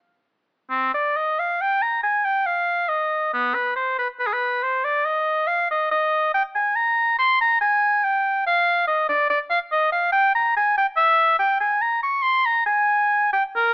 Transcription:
0.70 0.93 C4 medium
0.94 1.18 D5 medium
1.17 1.41 D#5 medium
1.39 1.63 F5 medium
1.61 1.84 G5 medium
1.82 2.03 A#5 medium
2.03 2.26 G#5 medium
2.25 2.48 G5 medium
2.46 2.90 F5 medium
2.89 3.32 D#5 medium
3.33 3.56 B3 medium
3.55 3.75 B4 medium
3.76 3.97 C5 medium
3.99 4.08 B4 medium
4.19 4.28 B4 medium
4.27 4.35 G#4 medium
4.33 4.64 B4 medium
4.63 4.86 C5 medium
4.85 5.07 D5 medium
5.05 5.49 D#5 medium
5.47 5.69 F5 medium
5.71 5.91 D#5 medium
5.91 6.32 D#5 medium
6.34 6.43 G5 medium
6.55 6.77 G#5 medium
6.75 7.18 A#5 medium
7.19 7.39 C6 medium
7.41 7.60 A#5 medium
7.61 8.06 G#5 medium
8.04 8.46 G5 medium
8.46 8.87 F5 loud
8.87 9.08 D#5 medium
9.09 9.29 D5 medium
9.30 9.39 D5 medium
9.50 9.60 F5 medium
9.72 9.92 D#5 loud
9.92 10.12 F5 medium
10.12 10.33 G5 loud
10.35 10.55 A#5 medium
10.57 10.76 G#5 loud
10.78 10.87 G5 medium
10.97 11.38 E5 loud
11.39 11.59 G5 medium
11.61 11.83 G#5 medium
11.82 12.02 A#5 medium
12.03 12.24 C#6 medium
12.22 12.47 C6 loud
12.46 12.66 A#5 medium
12.66 13.31 G#5 loud
13.33 13.43 G5 medium
13.56 13.74 A#4 loud

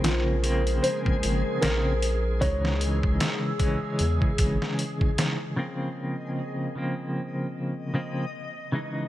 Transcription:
0.00 0.80 A#1 loud
0.00 0.40 C#3 medium
0.00 0.40 F3 medium
0.00 5.59 G#3 medium
0.00 0.41 A#3 medium
0.00 0.41 C4 medium
0.00 0.79 F4 medium
0.00 5.59 G#4 medium
0.00 2.38 A#4 medium
0.00 2.39 C5 medium
0.04 snare loud
0.04 closed hi-hat medium
0.43 1.58 C#3 medium
0.43 1.58 F3 medium
0.43 1.59 A#3 medium
0.43 1.59 C4 medium
0.43 closed hi-hat medium
0.67 closed hi-hat soft
0.82 1.58 C5 loud
0.82 closed hi-hat medium
1.06 kick medium
1.23 1.44 G#1 medium
1.23 closed hi-hat medium
1.61 2.44 A#1 medium
1.61 1.93 C#3 loud
1.61 1.93 F3 medium
1.61 1.93 A#3 medium
1.61 1.94 C4 loud
1.61 2.43 A#4 loud
1.61 snare loud
1.61 closed hi-hat medium
2.02 closed hi-hat medium
2.41 3.18 C#2 medium
2.41 3.56 C#3 medium
2.41 3.56 E3 medium
2.41 3.57 G#3 medium
2.41 3.57 D#4 medium
2.41 5.55 G#4 medium
2.41 4.74 C#5 loud
2.41 5.55 E6 loud
2.41 kick loud
2.41 closed hi-hat medium
2.65 snare medium
2.81 closed hi-hat medium
3.03 kick loud
3.20 snare loud
3.20 closed hi-hat medium
3.59 5.53 C#3 medium
3.59 5.53 E3 medium
3.59 5.54 G#3 medium
3.59 5.54 C#4 medium
3.59 kick medium
3.59 closed hi-hat medium
3.99 4.20 E2 loud
3.99 closed hi-hat medium
4.22 kick medium
4.38 4.59 G#1 medium
4.38 kick loud
4.38 closed hi-hat medium
4.62 snare soft
4.79 closed hi-hat medium
5.01 kick medium
5.18 snare loud
5.18 closed hi-hat medium
5.56 6.71 C#3 medium
5.56 6.72 F3 medium
5.56 6.72 A#3 medium
5.56 8.70 C4 medium
5.56 6.73 C4 medium
5.56 8.70 A#4 medium
5.56 9.08 D#5 medium
6.75 7.90 C#3 medium
6.75 7.91 F3 medium
6.75 7.91 A#3 medium
6.75 7.92 C4 medium
7.94 8.24 C#3 medium
7.94 8.24 F3 medium
7.94 8.25 A#3 medium
7.94 8.25 C4 medium
8.72 9.08 C#3 medium
8.72 9.08 E3 medium
8.72 9.08 G#3 medium
8.72 9.08 D#4 medium

